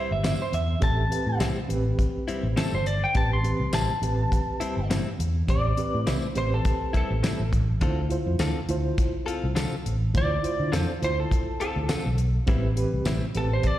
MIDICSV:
0, 0, Header, 1, 6, 480
1, 0, Start_track
1, 0, Key_signature, 0, "minor"
1, 0, Tempo, 583090
1, 673, Time_signature, 4, 2, 24, 8
1, 11350, End_track
2, 0, Start_track
2, 0, Title_t, "Lead electric guitar"
2, 0, Program_c, 0, 29
2, 0, Note_on_c, 0, 72, 78
2, 90, Note_off_c, 0, 72, 0
2, 101, Note_on_c, 0, 76, 81
2, 198, Note_off_c, 0, 76, 0
2, 212, Note_on_c, 0, 76, 70
2, 330, Note_off_c, 0, 76, 0
2, 345, Note_on_c, 0, 72, 69
2, 440, Note_off_c, 0, 72, 0
2, 447, Note_on_c, 0, 76, 82
2, 673, Note_off_c, 0, 76, 0
2, 687, Note_on_c, 0, 81, 93
2, 1146, Note_off_c, 0, 81, 0
2, 2119, Note_on_c, 0, 69, 78
2, 2244, Note_off_c, 0, 69, 0
2, 2260, Note_on_c, 0, 72, 74
2, 2361, Note_off_c, 0, 72, 0
2, 2361, Note_on_c, 0, 74, 68
2, 2485, Note_off_c, 0, 74, 0
2, 2500, Note_on_c, 0, 79, 67
2, 2598, Note_off_c, 0, 79, 0
2, 2609, Note_on_c, 0, 81, 83
2, 2729, Note_off_c, 0, 81, 0
2, 2744, Note_on_c, 0, 84, 76
2, 3073, Note_off_c, 0, 84, 0
2, 3082, Note_on_c, 0, 81, 83
2, 4009, Note_off_c, 0, 81, 0
2, 4527, Note_on_c, 0, 74, 93
2, 5045, Note_off_c, 0, 74, 0
2, 5045, Note_on_c, 0, 72, 93
2, 5219, Note_off_c, 0, 72, 0
2, 5250, Note_on_c, 0, 72, 81
2, 5370, Note_off_c, 0, 72, 0
2, 5384, Note_on_c, 0, 69, 81
2, 5713, Note_off_c, 0, 69, 0
2, 5739, Note_on_c, 0, 69, 79
2, 6192, Note_off_c, 0, 69, 0
2, 8376, Note_on_c, 0, 74, 100
2, 8862, Note_off_c, 0, 74, 0
2, 8862, Note_on_c, 0, 72, 100
2, 9063, Note_off_c, 0, 72, 0
2, 9092, Note_on_c, 0, 72, 95
2, 9210, Note_off_c, 0, 72, 0
2, 9219, Note_on_c, 0, 69, 79
2, 9549, Note_off_c, 0, 69, 0
2, 9560, Note_on_c, 0, 69, 83
2, 10021, Note_off_c, 0, 69, 0
2, 11009, Note_on_c, 0, 69, 94
2, 11127, Note_off_c, 0, 69, 0
2, 11141, Note_on_c, 0, 72, 82
2, 11251, Note_off_c, 0, 72, 0
2, 11251, Note_on_c, 0, 74, 86
2, 11350, Note_off_c, 0, 74, 0
2, 11350, End_track
3, 0, Start_track
3, 0, Title_t, "Reed electric piano"
3, 0, Program_c, 1, 4
3, 0, Note_on_c, 1, 60, 71
3, 0, Note_on_c, 1, 67, 69
3, 0, Note_on_c, 1, 71, 74
3, 170, Note_off_c, 1, 60, 0
3, 176, Note_off_c, 1, 67, 0
3, 180, Note_off_c, 1, 71, 0
3, 659, Note_on_c, 1, 60, 62
3, 664, Note_on_c, 1, 67, 63
3, 672, Note_on_c, 1, 69, 73
3, 848, Note_off_c, 1, 60, 0
3, 851, Note_off_c, 1, 67, 0
3, 855, Note_off_c, 1, 69, 0
3, 904, Note_on_c, 1, 60, 75
3, 914, Note_on_c, 1, 67, 66
3, 919, Note_on_c, 1, 71, 72
3, 1272, Note_off_c, 1, 60, 0
3, 1277, Note_off_c, 1, 67, 0
3, 1279, Note_off_c, 1, 71, 0
3, 1382, Note_on_c, 1, 60, 85
3, 1390, Note_on_c, 1, 67, 75
3, 1396, Note_on_c, 1, 71, 89
3, 2094, Note_off_c, 1, 60, 0
3, 2098, Note_off_c, 1, 67, 0
3, 2101, Note_off_c, 1, 71, 0
3, 2588, Note_on_c, 1, 60, 60
3, 2597, Note_on_c, 1, 67, 64
3, 2603, Note_on_c, 1, 71, 72
3, 2773, Note_off_c, 1, 60, 0
3, 2778, Note_off_c, 1, 67, 0
3, 2780, Note_off_c, 1, 71, 0
3, 2827, Note_on_c, 1, 60, 78
3, 2836, Note_on_c, 1, 67, 63
3, 2840, Note_on_c, 1, 71, 73
3, 3194, Note_off_c, 1, 60, 0
3, 3198, Note_off_c, 1, 67, 0
3, 3200, Note_off_c, 1, 71, 0
3, 3308, Note_on_c, 1, 60, 63
3, 3316, Note_on_c, 1, 67, 61
3, 3326, Note_on_c, 1, 71, 79
3, 4017, Note_off_c, 1, 60, 0
3, 4021, Note_off_c, 1, 67, 0
3, 4026, Note_off_c, 1, 71, 0
3, 4504, Note_on_c, 1, 60, 64
3, 4515, Note_on_c, 1, 67, 66
3, 4523, Note_on_c, 1, 72, 73
3, 4692, Note_off_c, 1, 60, 0
3, 4697, Note_off_c, 1, 67, 0
3, 4701, Note_off_c, 1, 72, 0
3, 4753, Note_on_c, 1, 60, 77
3, 4758, Note_on_c, 1, 67, 68
3, 4768, Note_on_c, 1, 71, 78
3, 5117, Note_off_c, 1, 60, 0
3, 5119, Note_off_c, 1, 67, 0
3, 5124, Note_off_c, 1, 71, 0
3, 5228, Note_on_c, 1, 60, 72
3, 5235, Note_on_c, 1, 67, 60
3, 5242, Note_on_c, 1, 71, 76
3, 5937, Note_off_c, 1, 60, 0
3, 5940, Note_off_c, 1, 67, 0
3, 5944, Note_off_c, 1, 71, 0
3, 6428, Note_on_c, 1, 64, 82
3, 6434, Note_on_c, 1, 65, 69
3, 6444, Note_on_c, 1, 72, 86
3, 6613, Note_off_c, 1, 64, 0
3, 6616, Note_off_c, 1, 65, 0
3, 6621, Note_off_c, 1, 72, 0
3, 6664, Note_on_c, 1, 64, 76
3, 6673, Note_on_c, 1, 65, 80
3, 6681, Note_on_c, 1, 72, 91
3, 7032, Note_off_c, 1, 64, 0
3, 7036, Note_off_c, 1, 65, 0
3, 7040, Note_off_c, 1, 72, 0
3, 7152, Note_on_c, 1, 64, 84
3, 7156, Note_on_c, 1, 65, 79
3, 7165, Note_on_c, 1, 72, 97
3, 7858, Note_off_c, 1, 64, 0
3, 7860, Note_off_c, 1, 65, 0
3, 7865, Note_off_c, 1, 72, 0
3, 8347, Note_on_c, 1, 64, 68
3, 8354, Note_on_c, 1, 65, 58
3, 8361, Note_on_c, 1, 72, 71
3, 8532, Note_off_c, 1, 64, 0
3, 8535, Note_off_c, 1, 65, 0
3, 8539, Note_off_c, 1, 72, 0
3, 8584, Note_on_c, 1, 64, 73
3, 8590, Note_on_c, 1, 65, 69
3, 8599, Note_on_c, 1, 72, 81
3, 8951, Note_off_c, 1, 64, 0
3, 8954, Note_off_c, 1, 65, 0
3, 8958, Note_off_c, 1, 72, 0
3, 9067, Note_on_c, 1, 64, 73
3, 9074, Note_on_c, 1, 65, 64
3, 9079, Note_on_c, 1, 72, 81
3, 9775, Note_off_c, 1, 64, 0
3, 9779, Note_off_c, 1, 65, 0
3, 9781, Note_off_c, 1, 72, 0
3, 10262, Note_on_c, 1, 60, 85
3, 10271, Note_on_c, 1, 67, 64
3, 10278, Note_on_c, 1, 71, 82
3, 10449, Note_off_c, 1, 60, 0
3, 10453, Note_off_c, 1, 67, 0
3, 10457, Note_off_c, 1, 71, 0
3, 10503, Note_on_c, 1, 60, 76
3, 10511, Note_on_c, 1, 67, 82
3, 10519, Note_on_c, 1, 71, 97
3, 10870, Note_off_c, 1, 60, 0
3, 10874, Note_off_c, 1, 67, 0
3, 10878, Note_off_c, 1, 71, 0
3, 10984, Note_on_c, 1, 60, 73
3, 10991, Note_on_c, 1, 67, 68
3, 10997, Note_on_c, 1, 71, 78
3, 11350, Note_off_c, 1, 60, 0
3, 11350, Note_off_c, 1, 67, 0
3, 11350, Note_off_c, 1, 71, 0
3, 11350, End_track
4, 0, Start_track
4, 0, Title_t, "Clean electric guitar"
4, 0, Program_c, 2, 27
4, 0, Note_on_c, 2, 55, 47
4, 0, Note_on_c, 2, 60, 40
4, 0, Note_on_c, 2, 64, 41
4, 105, Note_off_c, 2, 64, 0
4, 110, Note_off_c, 2, 60, 0
4, 114, Note_off_c, 2, 55, 0
4, 192, Note_on_c, 2, 45, 83
4, 197, Note_on_c, 2, 55, 77
4, 201, Note_on_c, 2, 60, 89
4, 202, Note_on_c, 2, 64, 81
4, 345, Note_off_c, 2, 45, 0
4, 348, Note_off_c, 2, 55, 0
4, 350, Note_off_c, 2, 60, 0
4, 351, Note_off_c, 2, 64, 0
4, 1153, Note_on_c, 2, 45, 66
4, 1158, Note_on_c, 2, 55, 77
4, 1160, Note_on_c, 2, 60, 83
4, 1166, Note_on_c, 2, 64, 83
4, 1306, Note_off_c, 2, 45, 0
4, 1309, Note_off_c, 2, 55, 0
4, 1310, Note_off_c, 2, 60, 0
4, 1313, Note_off_c, 2, 64, 0
4, 1874, Note_on_c, 2, 64, 53
4, 1881, Note_on_c, 2, 60, 47
4, 1887, Note_on_c, 2, 55, 50
4, 2027, Note_off_c, 2, 64, 0
4, 2030, Note_off_c, 2, 60, 0
4, 2033, Note_off_c, 2, 55, 0
4, 2110, Note_on_c, 2, 45, 83
4, 2114, Note_on_c, 2, 55, 81
4, 2115, Note_on_c, 2, 60, 86
4, 2119, Note_on_c, 2, 64, 84
4, 2265, Note_off_c, 2, 45, 0
4, 2267, Note_off_c, 2, 55, 0
4, 2267, Note_off_c, 2, 60, 0
4, 2269, Note_off_c, 2, 64, 0
4, 3069, Note_on_c, 2, 45, 63
4, 3074, Note_on_c, 2, 55, 71
4, 3078, Note_on_c, 2, 60, 81
4, 3080, Note_on_c, 2, 64, 82
4, 3224, Note_off_c, 2, 45, 0
4, 3227, Note_off_c, 2, 55, 0
4, 3229, Note_off_c, 2, 60, 0
4, 3230, Note_off_c, 2, 64, 0
4, 3789, Note_on_c, 2, 64, 57
4, 3798, Note_on_c, 2, 60, 59
4, 3805, Note_on_c, 2, 55, 40
4, 3944, Note_off_c, 2, 64, 0
4, 3949, Note_off_c, 2, 60, 0
4, 3953, Note_off_c, 2, 55, 0
4, 4034, Note_on_c, 2, 45, 80
4, 4037, Note_on_c, 2, 55, 84
4, 4038, Note_on_c, 2, 60, 89
4, 4043, Note_on_c, 2, 64, 87
4, 4187, Note_off_c, 2, 45, 0
4, 4189, Note_off_c, 2, 55, 0
4, 4189, Note_off_c, 2, 60, 0
4, 4191, Note_off_c, 2, 64, 0
4, 4995, Note_on_c, 2, 45, 79
4, 4996, Note_on_c, 2, 55, 65
4, 5000, Note_on_c, 2, 60, 75
4, 5003, Note_on_c, 2, 64, 76
4, 5147, Note_off_c, 2, 45, 0
4, 5148, Note_off_c, 2, 55, 0
4, 5150, Note_off_c, 2, 60, 0
4, 5152, Note_off_c, 2, 64, 0
4, 5707, Note_on_c, 2, 64, 52
4, 5714, Note_on_c, 2, 60, 50
4, 5721, Note_on_c, 2, 55, 40
4, 5864, Note_off_c, 2, 64, 0
4, 5867, Note_off_c, 2, 60, 0
4, 5871, Note_off_c, 2, 55, 0
4, 5951, Note_on_c, 2, 45, 80
4, 5957, Note_on_c, 2, 55, 77
4, 5958, Note_on_c, 2, 60, 90
4, 5961, Note_on_c, 2, 64, 84
4, 6105, Note_off_c, 2, 45, 0
4, 6108, Note_off_c, 2, 55, 0
4, 6109, Note_off_c, 2, 60, 0
4, 6111, Note_off_c, 2, 64, 0
4, 6430, Note_on_c, 2, 50, 63
4, 6435, Note_on_c, 2, 60, 70
4, 6437, Note_on_c, 2, 65, 76
4, 6443, Note_on_c, 2, 69, 69
4, 6585, Note_off_c, 2, 50, 0
4, 6588, Note_off_c, 2, 60, 0
4, 6588, Note_off_c, 2, 65, 0
4, 6591, Note_off_c, 2, 69, 0
4, 6912, Note_on_c, 2, 50, 90
4, 6915, Note_on_c, 2, 60, 86
4, 6919, Note_on_c, 2, 65, 81
4, 6923, Note_on_c, 2, 69, 89
4, 7066, Note_off_c, 2, 50, 0
4, 7067, Note_off_c, 2, 60, 0
4, 7069, Note_off_c, 2, 65, 0
4, 7072, Note_off_c, 2, 69, 0
4, 7624, Note_on_c, 2, 69, 55
4, 7634, Note_on_c, 2, 65, 58
4, 7640, Note_on_c, 2, 60, 52
4, 7782, Note_off_c, 2, 69, 0
4, 7786, Note_off_c, 2, 65, 0
4, 7790, Note_off_c, 2, 60, 0
4, 7863, Note_on_c, 2, 50, 98
4, 7868, Note_on_c, 2, 60, 97
4, 7872, Note_on_c, 2, 65, 96
4, 7875, Note_on_c, 2, 69, 99
4, 8021, Note_off_c, 2, 50, 0
4, 8023, Note_off_c, 2, 60, 0
4, 8025, Note_off_c, 2, 65, 0
4, 8027, Note_off_c, 2, 69, 0
4, 8827, Note_on_c, 2, 50, 71
4, 8830, Note_on_c, 2, 60, 78
4, 8835, Note_on_c, 2, 69, 80
4, 8836, Note_on_c, 2, 65, 79
4, 8983, Note_off_c, 2, 50, 0
4, 8984, Note_off_c, 2, 60, 0
4, 8987, Note_off_c, 2, 65, 0
4, 8987, Note_off_c, 2, 69, 0
4, 9551, Note_on_c, 2, 69, 57
4, 9558, Note_on_c, 2, 65, 48
4, 9568, Note_on_c, 2, 60, 42
4, 9705, Note_off_c, 2, 69, 0
4, 9708, Note_off_c, 2, 65, 0
4, 9713, Note_off_c, 2, 60, 0
4, 9785, Note_on_c, 2, 50, 89
4, 9791, Note_on_c, 2, 60, 86
4, 9796, Note_on_c, 2, 65, 85
4, 9799, Note_on_c, 2, 69, 97
4, 9941, Note_off_c, 2, 50, 0
4, 9944, Note_off_c, 2, 60, 0
4, 9947, Note_off_c, 2, 65, 0
4, 9948, Note_off_c, 2, 69, 0
4, 10273, Note_on_c, 2, 45, 72
4, 10277, Note_on_c, 2, 55, 84
4, 10283, Note_on_c, 2, 60, 76
4, 10283, Note_on_c, 2, 64, 88
4, 10425, Note_off_c, 2, 45, 0
4, 10427, Note_off_c, 2, 55, 0
4, 10430, Note_off_c, 2, 60, 0
4, 10430, Note_off_c, 2, 64, 0
4, 10751, Note_on_c, 2, 45, 89
4, 10753, Note_on_c, 2, 55, 76
4, 10756, Note_on_c, 2, 60, 87
4, 10762, Note_on_c, 2, 64, 86
4, 10904, Note_off_c, 2, 45, 0
4, 10905, Note_off_c, 2, 55, 0
4, 10907, Note_off_c, 2, 60, 0
4, 10909, Note_off_c, 2, 64, 0
4, 11350, End_track
5, 0, Start_track
5, 0, Title_t, "Fingered electric bass"
5, 0, Program_c, 3, 33
5, 90, Note_on_c, 3, 31, 79
5, 270, Note_off_c, 3, 31, 0
5, 433, Note_on_c, 3, 40, 74
5, 615, Note_off_c, 3, 40, 0
5, 677, Note_on_c, 3, 33, 96
5, 858, Note_off_c, 3, 33, 0
5, 1040, Note_on_c, 3, 45, 73
5, 1124, Note_off_c, 3, 45, 0
5, 1147, Note_on_c, 3, 36, 90
5, 1249, Note_off_c, 3, 36, 0
5, 1389, Note_on_c, 3, 33, 74
5, 1573, Note_off_c, 3, 33, 0
5, 2002, Note_on_c, 3, 33, 92
5, 2085, Note_off_c, 3, 33, 0
5, 2244, Note_on_c, 3, 31, 87
5, 2509, Note_off_c, 3, 31, 0
5, 2594, Note_on_c, 3, 33, 88
5, 2877, Note_off_c, 3, 33, 0
5, 2961, Note_on_c, 3, 36, 76
5, 3045, Note_off_c, 3, 36, 0
5, 3069, Note_on_c, 3, 33, 84
5, 3171, Note_off_c, 3, 33, 0
5, 3308, Note_on_c, 3, 33, 81
5, 3492, Note_off_c, 3, 33, 0
5, 3923, Note_on_c, 3, 31, 71
5, 4106, Note_off_c, 3, 31, 0
5, 4273, Note_on_c, 3, 40, 78
5, 4456, Note_off_c, 3, 40, 0
5, 4514, Note_on_c, 3, 33, 100
5, 4696, Note_off_c, 3, 33, 0
5, 4893, Note_on_c, 3, 45, 65
5, 4972, Note_off_c, 3, 45, 0
5, 4997, Note_on_c, 3, 36, 75
5, 5096, Note_off_c, 3, 36, 0
5, 5235, Note_on_c, 3, 33, 71
5, 5417, Note_off_c, 3, 33, 0
5, 5850, Note_on_c, 3, 33, 89
5, 5931, Note_off_c, 3, 33, 0
5, 6089, Note_on_c, 3, 33, 80
5, 6352, Note_off_c, 3, 33, 0
5, 6433, Note_on_c, 3, 38, 86
5, 6715, Note_off_c, 3, 38, 0
5, 6804, Note_on_c, 3, 41, 82
5, 6887, Note_off_c, 3, 41, 0
5, 6909, Note_on_c, 3, 38, 82
5, 7011, Note_off_c, 3, 38, 0
5, 7152, Note_on_c, 3, 38, 90
5, 7335, Note_off_c, 3, 38, 0
5, 7768, Note_on_c, 3, 36, 82
5, 7949, Note_off_c, 3, 36, 0
5, 8116, Note_on_c, 3, 33, 88
5, 8297, Note_off_c, 3, 33, 0
5, 8353, Note_on_c, 3, 38, 92
5, 8535, Note_off_c, 3, 38, 0
5, 8721, Note_on_c, 3, 50, 69
5, 8804, Note_off_c, 3, 50, 0
5, 8828, Note_on_c, 3, 41, 87
5, 8930, Note_off_c, 3, 41, 0
5, 9075, Note_on_c, 3, 38, 80
5, 9256, Note_off_c, 3, 38, 0
5, 9681, Note_on_c, 3, 38, 81
5, 9764, Note_off_c, 3, 38, 0
5, 9927, Note_on_c, 3, 35, 93
5, 10190, Note_off_c, 3, 35, 0
5, 10274, Note_on_c, 3, 33, 95
5, 10555, Note_off_c, 3, 33, 0
5, 10646, Note_on_c, 3, 36, 66
5, 10727, Note_off_c, 3, 36, 0
5, 10752, Note_on_c, 3, 33, 85
5, 10851, Note_off_c, 3, 33, 0
5, 10991, Note_on_c, 3, 33, 84
5, 11173, Note_off_c, 3, 33, 0
5, 11350, End_track
6, 0, Start_track
6, 0, Title_t, "Drums"
6, 199, Note_on_c, 9, 42, 83
6, 199, Note_on_c, 9, 54, 98
6, 202, Note_on_c, 9, 38, 107
6, 281, Note_off_c, 9, 42, 0
6, 281, Note_off_c, 9, 54, 0
6, 285, Note_off_c, 9, 38, 0
6, 438, Note_on_c, 9, 42, 58
6, 520, Note_off_c, 9, 42, 0
6, 673, Note_on_c, 9, 42, 72
6, 676, Note_on_c, 9, 36, 113
6, 755, Note_off_c, 9, 42, 0
6, 759, Note_off_c, 9, 36, 0
6, 922, Note_on_c, 9, 42, 65
6, 1004, Note_off_c, 9, 42, 0
6, 1154, Note_on_c, 9, 42, 74
6, 1154, Note_on_c, 9, 54, 107
6, 1158, Note_on_c, 9, 38, 99
6, 1237, Note_off_c, 9, 42, 0
6, 1237, Note_off_c, 9, 54, 0
6, 1240, Note_off_c, 9, 38, 0
6, 1400, Note_on_c, 9, 42, 57
6, 1482, Note_off_c, 9, 42, 0
6, 1636, Note_on_c, 9, 36, 82
6, 1636, Note_on_c, 9, 42, 70
6, 1718, Note_off_c, 9, 36, 0
6, 1719, Note_off_c, 9, 42, 0
6, 1879, Note_on_c, 9, 42, 53
6, 1961, Note_off_c, 9, 42, 0
6, 2118, Note_on_c, 9, 42, 70
6, 2118, Note_on_c, 9, 54, 113
6, 2122, Note_on_c, 9, 38, 108
6, 2201, Note_off_c, 9, 42, 0
6, 2201, Note_off_c, 9, 54, 0
6, 2204, Note_off_c, 9, 38, 0
6, 2357, Note_on_c, 9, 42, 59
6, 2439, Note_off_c, 9, 42, 0
6, 2590, Note_on_c, 9, 42, 79
6, 2594, Note_on_c, 9, 36, 99
6, 2673, Note_off_c, 9, 42, 0
6, 2676, Note_off_c, 9, 36, 0
6, 2836, Note_on_c, 9, 42, 58
6, 2918, Note_off_c, 9, 42, 0
6, 3068, Note_on_c, 9, 42, 77
6, 3068, Note_on_c, 9, 54, 113
6, 3071, Note_on_c, 9, 38, 96
6, 3150, Note_off_c, 9, 42, 0
6, 3150, Note_off_c, 9, 54, 0
6, 3154, Note_off_c, 9, 38, 0
6, 3316, Note_on_c, 9, 42, 63
6, 3398, Note_off_c, 9, 42, 0
6, 3556, Note_on_c, 9, 36, 77
6, 3559, Note_on_c, 9, 42, 87
6, 3638, Note_off_c, 9, 36, 0
6, 3642, Note_off_c, 9, 42, 0
6, 3793, Note_on_c, 9, 42, 62
6, 3876, Note_off_c, 9, 42, 0
6, 4039, Note_on_c, 9, 42, 88
6, 4039, Note_on_c, 9, 54, 110
6, 4042, Note_on_c, 9, 38, 115
6, 4121, Note_off_c, 9, 42, 0
6, 4121, Note_off_c, 9, 54, 0
6, 4125, Note_off_c, 9, 38, 0
6, 4280, Note_on_c, 9, 42, 69
6, 4363, Note_off_c, 9, 42, 0
6, 4515, Note_on_c, 9, 36, 100
6, 4516, Note_on_c, 9, 42, 80
6, 4598, Note_off_c, 9, 36, 0
6, 4598, Note_off_c, 9, 42, 0
6, 4753, Note_on_c, 9, 42, 55
6, 4835, Note_off_c, 9, 42, 0
6, 4996, Note_on_c, 9, 42, 78
6, 4996, Note_on_c, 9, 54, 98
6, 4999, Note_on_c, 9, 38, 109
6, 5078, Note_off_c, 9, 42, 0
6, 5078, Note_off_c, 9, 54, 0
6, 5081, Note_off_c, 9, 38, 0
6, 5231, Note_on_c, 9, 42, 55
6, 5313, Note_off_c, 9, 42, 0
6, 5473, Note_on_c, 9, 42, 85
6, 5476, Note_on_c, 9, 36, 86
6, 5555, Note_off_c, 9, 42, 0
6, 5558, Note_off_c, 9, 36, 0
6, 5716, Note_on_c, 9, 36, 67
6, 5716, Note_on_c, 9, 42, 47
6, 5798, Note_off_c, 9, 36, 0
6, 5798, Note_off_c, 9, 42, 0
6, 5958, Note_on_c, 9, 42, 79
6, 5958, Note_on_c, 9, 54, 101
6, 5961, Note_on_c, 9, 38, 96
6, 6040, Note_off_c, 9, 42, 0
6, 6040, Note_off_c, 9, 54, 0
6, 6043, Note_off_c, 9, 38, 0
6, 6196, Note_on_c, 9, 36, 83
6, 6200, Note_on_c, 9, 42, 59
6, 6278, Note_off_c, 9, 36, 0
6, 6283, Note_off_c, 9, 42, 0
6, 6430, Note_on_c, 9, 42, 76
6, 6434, Note_on_c, 9, 36, 110
6, 6513, Note_off_c, 9, 42, 0
6, 6516, Note_off_c, 9, 36, 0
6, 6671, Note_on_c, 9, 42, 59
6, 6754, Note_off_c, 9, 42, 0
6, 6908, Note_on_c, 9, 42, 80
6, 6908, Note_on_c, 9, 54, 96
6, 6911, Note_on_c, 9, 38, 104
6, 6990, Note_off_c, 9, 42, 0
6, 6990, Note_off_c, 9, 54, 0
6, 6994, Note_off_c, 9, 38, 0
6, 7151, Note_on_c, 9, 42, 65
6, 7233, Note_off_c, 9, 42, 0
6, 7392, Note_on_c, 9, 42, 85
6, 7393, Note_on_c, 9, 36, 90
6, 7474, Note_off_c, 9, 42, 0
6, 7475, Note_off_c, 9, 36, 0
6, 7638, Note_on_c, 9, 42, 57
6, 7720, Note_off_c, 9, 42, 0
6, 7873, Note_on_c, 9, 42, 91
6, 7873, Note_on_c, 9, 54, 100
6, 7876, Note_on_c, 9, 38, 100
6, 7955, Note_off_c, 9, 42, 0
6, 7955, Note_off_c, 9, 54, 0
6, 7959, Note_off_c, 9, 38, 0
6, 8118, Note_on_c, 9, 42, 58
6, 8200, Note_off_c, 9, 42, 0
6, 8354, Note_on_c, 9, 36, 97
6, 8354, Note_on_c, 9, 42, 81
6, 8436, Note_off_c, 9, 36, 0
6, 8436, Note_off_c, 9, 42, 0
6, 8595, Note_on_c, 9, 42, 67
6, 8678, Note_off_c, 9, 42, 0
6, 8836, Note_on_c, 9, 42, 82
6, 8836, Note_on_c, 9, 54, 101
6, 8839, Note_on_c, 9, 38, 102
6, 8918, Note_off_c, 9, 42, 0
6, 8918, Note_off_c, 9, 54, 0
6, 8921, Note_off_c, 9, 38, 0
6, 9076, Note_on_c, 9, 42, 70
6, 9159, Note_off_c, 9, 42, 0
6, 9314, Note_on_c, 9, 36, 84
6, 9319, Note_on_c, 9, 42, 79
6, 9397, Note_off_c, 9, 36, 0
6, 9401, Note_off_c, 9, 42, 0
6, 9555, Note_on_c, 9, 42, 53
6, 9638, Note_off_c, 9, 42, 0
6, 9787, Note_on_c, 9, 42, 77
6, 9787, Note_on_c, 9, 54, 114
6, 9791, Note_on_c, 9, 38, 114
6, 9870, Note_off_c, 9, 42, 0
6, 9870, Note_off_c, 9, 54, 0
6, 9873, Note_off_c, 9, 38, 0
6, 10027, Note_on_c, 9, 42, 54
6, 10109, Note_off_c, 9, 42, 0
6, 10266, Note_on_c, 9, 42, 74
6, 10271, Note_on_c, 9, 36, 107
6, 10349, Note_off_c, 9, 42, 0
6, 10353, Note_off_c, 9, 36, 0
6, 10511, Note_on_c, 9, 42, 60
6, 10594, Note_off_c, 9, 42, 0
6, 10746, Note_on_c, 9, 42, 66
6, 10746, Note_on_c, 9, 54, 102
6, 10749, Note_on_c, 9, 38, 110
6, 10828, Note_off_c, 9, 42, 0
6, 10828, Note_off_c, 9, 54, 0
6, 10831, Note_off_c, 9, 38, 0
6, 10987, Note_on_c, 9, 42, 64
6, 11069, Note_off_c, 9, 42, 0
6, 11223, Note_on_c, 9, 42, 73
6, 11229, Note_on_c, 9, 36, 77
6, 11306, Note_off_c, 9, 42, 0
6, 11311, Note_off_c, 9, 36, 0
6, 11350, End_track
0, 0, End_of_file